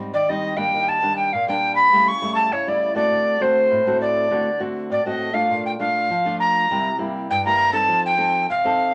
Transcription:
Already playing: nylon-string guitar G#2 G3 C4 D#4
0.13 nylon-string guitar D#3, recorder D5
0.29 nylon-string guitar G3 C4 D#4, recorder D#5
0.57 nylon-string guitar G3 A#3 D4, recorder G5
0.74 nylon-string guitar D#3
0.89 recorder A5
1.02 nylon-string guitar G3 A#3 D4
1.16 recorder G5
1.33 nylon-string guitar A#2, recorder F5
1.48 nylon-string guitar G3 A#3 D4, recorder G5
1.75 recorder B5
1.92 nylon-string guitar C#3 G3 A3 E4
2.08 recorder C#6
2.22 nylon-string guitar G3 A3 E4
2.35 recorder A5
2.52 nylon-string guitar C#3, recorder C#5
2.67 nylon-string guitar G3 A3 E4, recorder D5
2.95 nylon-string guitar A3 C4 F#4, recorder D5
3.11 nylon-string guitar D3
3.40 nylon-string guitar A3 C4 F#4, recorder C5
3.71 nylon-string guitar A2
3.86 nylon-string guitar A3 C4 F#4
4.01 recorder D5
4.31 nylon-string guitar D3 A3 C4 F#4
4.59 nylon-string guitar A3 C4 F#4
4.90 nylon-string guitar A2, recorder D5
5.05 nylon-string guitar A3 C4 F#4, recorder D#5
5.33 nylon-string guitar A3 D4 F4, recorder F5
5.50 nylon-string guitar A#2
5.66 recorder G5
5.79 nylon-string guitar A3 D4 F4, recorder F5
6.10 nylon-string guitar F3
6.25 nylon-string guitar A3 D4 F4
6.40 recorder A#5
6.70 nylon-string guitar C3 G3 A#3 E4
6.98 nylon-string guitar G3 A#3 E4
7.30 nylon-string guitar G2, recorder G5
7.45 nylon-string guitar G3 A#3 E4, recorder A#5
7.72 nylon-string guitar C4 D#4 A4, recorder A5
7.89 nylon-string guitar F3
8.06 recorder G5
8.18 nylon-string guitar C4 D#4 A4
8.49 nylon-string guitar C3, recorder F5
8.65 nylon-string guitar C4 D#4 A4

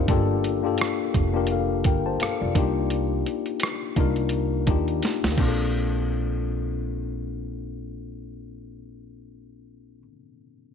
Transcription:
Already playing: tine electric piano D#4 F4 G4 A#4 D5
0.08 upright bass G1, tine electric piano A#3 D4 F4 G4 A4, kick, closed hi-hat
0.44 closed hi-hat
0.63 tine electric piano A#3 D4 F4 G4 A4
0.78 cross-stick, closed hi-hat
1.14 upright bass F1, kick, closed hi-hat
1.33 tine electric piano A#3 D4 F4 G4 A#4
1.47 closed hi-hat
1.51 tine electric piano A4 F5
1.84 upright bass G1, tine electric piano A#4 G5, kick, closed hi-hat
2.06 tine electric piano C5 A5
2.20 tine electric piano A4 F5, muted upright bass stroke, cross-stick, closed hi-hat
2.41 upright bass F1, tine electric piano F4 D5
2.55 upright bass C2, tine electric piano A#3 D4 D#4 F4 G4, kick, closed hi-hat
2.90 closed hi-hat
3.26 closed hi-hat
3.46 closed hi-hat
3.60 cross-stick, closed hi-hat
3.96 upright bass C2, tine electric piano A#3 D4 D#4 F4, kick, closed hi-hat
4.00 tine electric piano A#4
4.16 closed hi-hat
4.29 closed hi-hat
4.66 upright bass D#2, tine electric piano A#3 D4 D#4 F4 G4, kick, closed hi-hat
4.88 closed hi-hat
5.02 snare, closed hi-hat
5.24 upright bass D2, snare
5.32 tine electric piano A#3 C4
5.38 upright bass A#1, tine electric piano D4, kick, crash
5.43 tine electric piano F4
5.48 tine electric piano A4

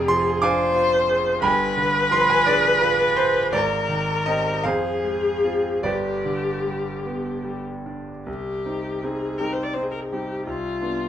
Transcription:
Already playing: grand piano F1 F2 C3 D5 F5 G#5, viola G#4
0.08 grand piano F3 C6
0.42 grand piano D4 F5 G#5 D6, viola C5
0.76 grand piano F4
1.10 grand piano G#4
1.41 grand piano G1 G2 G5 G#5 B5, viola B4
1.77 grand piano D3
2.11 grand piano F3 C6
2.20 grand piano B5
2.30 grand piano G#5
2.39 grand piano B5
2.46 grand piano D4 G#4 B4 D5
2.81 grand piano F4 B4
3.16 grand piano G#4 C5
3.52 grand piano G#1 G#2 D5, viola A#4
3.89 grand piano D#3
4.26 grand piano C4 G4 D#5
4.63 grand piano F2 G#4 C5 F5, viola G#4
5.04 grand piano G#3
5.45 grand piano C4 F4
5.83 grand piano G1 G2 G4 B4 D5
5.88 viola G4
6.25 grand piano D3
6.66 grand piano G3
7.06 grand piano B3
7.45 grand piano G3
7.86 grand piano D4
8.26 grand piano C2, viola G4
8.65 grand piano C4 D#4
9.04 grand piano G3 C4 D#4, viola G#4
9.38 grand piano G3 C4 D#4, viola A#4
9.52 viola C5
9.63 viola D5
9.73 grand piano C4 D#4, viola C5
9.82 viola G#4
9.91 viola A#4
10.01 viola G#4
10.12 grand piano G3 C4 D#4, viola G4
10.46 grand piano C2, viola F4
10.82 grand piano B3 D4

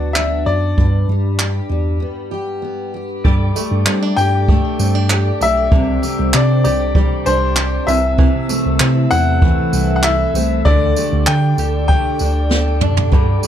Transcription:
Already playing: tine electric piano D2, steel-string acoustic guitar F#3 B3 D4 F#4, upright piano D5
0.13 steel-string acoustic guitar D4, upright piano E5, clap
0.46 tine electric piano F#2, steel-string acoustic guitar F#4, upright piano D5
0.78 steel-string acoustic guitar G2, tine electric piano G2, kick
1.08 tine electric piano G2, steel-string acoustic guitar G3
1.39 steel-string acoustic guitar G4, clap
1.69 tine electric piano E2, steel-string acoustic guitar G3
2.00 steel-string acoustic guitar B3
2.31 steel-string acoustic guitar G4
2.62 steel-string acoustic guitar B3
2.94 steel-string acoustic guitar G4
3.24 tine electric piano G2, five-string banjo G3, steel-string acoustic guitar G3, tonewheel organ A4 D5 G5 D6, kick
3.56 steel-string acoustic guitar A3, five-string banjo A3, tambourine
3.71 tine electric piano G2
3.86 tine electric piano G3, five-string banjo C4, steel-string acoustic guitar D4, clap
4.02 five-string banjo D4
4.16 tine electric piano G2, five-string banjo G4, steel-string acoustic guitar G4, upright piano G5, tambourine
4.48 five-string banjo A3, steel-string acoustic guitar A3, kick
4.79 tine electric piano G2, five-string banjo C4, steel-string acoustic guitar D4, tambourine
4.95 five-string banjo D4
5.10 five-string banjo G4, steel-string acoustic guitar G4, clap
5.41 tine electric piano B1, steel-string acoustic guitar A3, five-string banjo D4, upright piano E5, tambourine
5.71 tine electric piano C2, steel-string acoustic guitar C3, five-string banjo D3, tonewheel organ C5, kick
6.02 five-string banjo G3, steel-string acoustic guitar C4, tambourine
6.18 tine electric piano C2
6.33 tine electric piano C3, five-string banjo D4, steel-string acoustic guitar D4, upright piano D5, clap
6.64 tine electric piano C2, five-string banjo G4, steel-string acoustic guitar G4, upright piano D5, tambourine
6.95 five-string banjo G3, steel-string acoustic guitar G3, kick
7.26 tine electric piano C2, steel-string acoustic guitar D4, five-string banjo D4, upright piano C5, tambourine
7.56 steel-string acoustic guitar G4, five-string banjo G4, clap
7.87 tine electric piano C2, steel-string acoustic guitar C3, five-string banjo E3, upright piano E5, tonewheel organ E5 A5 E6, tambourine
8.18 steel-string acoustic guitar C3, five-string banjo E3, kick
8.49 steel-string acoustic guitar A3, five-string banjo A3, tambourine
8.65 tine electric piano C2
8.80 tine electric piano C3, five-string banjo C4, steel-string acoustic guitar E4, clap
9.11 tine electric piano E2, five-string banjo E4, steel-string acoustic guitar A4, upright piano F#5, tambourine
9.42 steel-string acoustic guitar E3, five-string banjo A3, kick
9.73 tine electric piano C2, five-string banjo C4, steel-string acoustic guitar E4, tambourine
9.96 upright piano F#5
10.03 five-string banjo E4, steel-string acoustic guitar A4, upright piano E5, clap
10.35 tine electric piano C2, steel-string acoustic guitar A3, five-string banjo C4, tambourine
10.65 tine electric piano D2, steel-string acoustic guitar D3, five-string banjo D3, tonewheel organ A4 D5 G5 D6, upright piano D5, kick
10.96 steel-string acoustic guitar G3, five-string banjo A3, tambourine
11.12 tine electric piano D2
11.27 tine electric piano D3, steel-string acoustic guitar D4, five-string banjo D4, upright piano G5, clap
11.58 tine electric piano D2, five-string banjo G4, steel-string acoustic guitar A4, tambourine
11.88 steel-string acoustic guitar G3, five-string banjo A3, upright piano G5, kick
12.19 tine electric piano D2, steel-string acoustic guitar D4, five-string banjo D4, tambourine
12.50 five-string banjo G4, steel-string acoustic guitar A4, snare
12.81 tine electric piano F#2, five-string banjo D4, mid tom
12.97 floor tom
13.12 tine electric piano G2, five-string banjo D3, steel-string acoustic guitar G3, kick
13.43 steel-string acoustic guitar A3, tambourine

